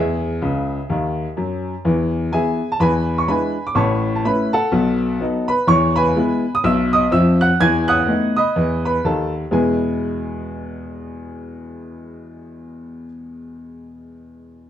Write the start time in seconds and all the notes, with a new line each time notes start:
Already playing: E2 G#4 E5
0.42 C#2 C#3
0.90 D#2 D#3
1.37 F#2 F#3
1.85 E2 E3
2.32 E3 B3 E4 G#4 E5 G#5
2.72 A5
2.80 E2 E3 B4 G#5 B5
3.18 C#6
3.28 G#3 D4 E4 B4 G#5 B5
3.67 D6
3.75 A1 A2 C#5 A5 C#6
4.16 A5
4.25 A3 C#4 E4 B4 B5
4.53 A4 F#5 A5
4.72 B1 B2
5.20 F#3 B3 D#4
5.48 B4 B5
5.67 E2 E3 C#5 C#6
5.96 B4 G#5 B5
6.16 G#3 B3 E4
6.55 D#6
6.64 B1 B2 E5 E6
6.93 D#5 D#6
7.11 F2 F3 E5 E6
7.41 F#5 F#6
7.60 E2 E3 G#5 G#6
7.88 F#5 D#6 F#6
8.08 A3 B3 D#4
8.37 D#5 B5 D#6
8.56 E2 E3
8.85 B4 B5
9.04 D#2 D#3 A4 A5
9.51 E2 B2 G#3 B3 E4 G#4 G#5